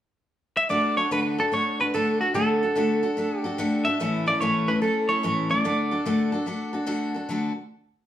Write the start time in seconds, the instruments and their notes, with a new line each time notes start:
0.57 clean electric guitar E5
0.69 steel-string acoustic guitar D3 A3 D4 F#4 A4, clean electric guitar D5
0.97 steel-string acoustic guitar D4 F#4 A4, clean electric guitar C#5
1.11 steel-string acoustic guitar D3 A3 D4 F#4 A4, clean electric guitar B4
1.38 steel-string acoustic guitar D4 F#4 A4, clean electric guitar A4
1.52 steel-string acoustic guitar A3 D4 F#4 A4, clean electric guitar C#5
1.80 steel-string acoustic guitar D4 F#4 A4, clean electric guitar B4
1.94 steel-string acoustic guitar D3 A3 D4 F#4 A4, clean electric guitar A4
2.21 steel-string acoustic guitar D4 F#4 A4, clean electric guitar F#4
2.34 steel-string acoustic guitar D3 A3 D4 F#4 A4, clean electric guitar A4
2.63 steel-string acoustic guitar D4 F#4 A4
2.76 steel-string acoustic guitar D3 A3 D4 F#4 A4
3.03 steel-string acoustic guitar D4 F#4 A4
3.17 steel-string acoustic guitar A3 D4 F#4 A4
3.39 clean electric guitar G4
3.44 steel-string acoustic guitar D4 F#4 A4
3.58 steel-string acoustic guitar D3 A3 D4 F#4 A4
3.85 steel-string acoustic guitar D4 F#4 A4, clean electric guitar E5
4.00 steel-string acoustic guitar A2 E3 A3 C#4 E4 A4
4.26 steel-string acoustic guitar A3 C#4 E4 A4, clean electric guitar D5
4.41 steel-string acoustic guitar A2 E3 A3 C#4 E4 A4, clean electric guitar C#5
4.68 steel-string acoustic guitar A3 C#4 E4 A4, clean electric guitar B4
4.82 steel-string acoustic guitar A3 C#4 E4 A4, clean electric guitar A4
5.09 steel-string acoustic guitar A3 C#4 E4 A4, clean electric guitar C#5
5.23 steel-string acoustic guitar A2 E3 A3 C#4 E4 A4
5.49 steel-string acoustic guitar A3 C#4 E4 A4, clean electric guitar D5
5.64 steel-string acoustic guitar D3 A3 D4 F#4 A4
5.91 steel-string acoustic guitar D4 F#4 A4
6.06 steel-string acoustic guitar D3 A3 D4 F#4 A4
6.32 steel-string acoustic guitar D4 F#4 A4
6.46 steel-string acoustic guitar A3 D4 F#4 A4
6.73 steel-string acoustic guitar D4 F#4 A4
6.87 steel-string acoustic guitar D3 A3 D4 F#4 A4
7.14 steel-string acoustic guitar D4 F#4 A4
7.29 steel-string acoustic guitar D3 A3 D4 F#4 A4